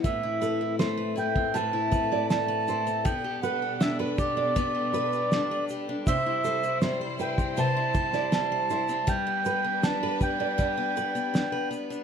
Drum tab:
SH |x-x-x-x-x-x-x-xx|x-x-x-x-x-xxx-x-|x-xxx-xxx-xxx-xx|x-x-x-x-x-xxx-xx|
SD |----o-------o---|----o-------o---|----o------oo---|----o-------o---|
BD |o------o--o-----|o-----o-o-------|o------o--o-----|o-----o-o-------|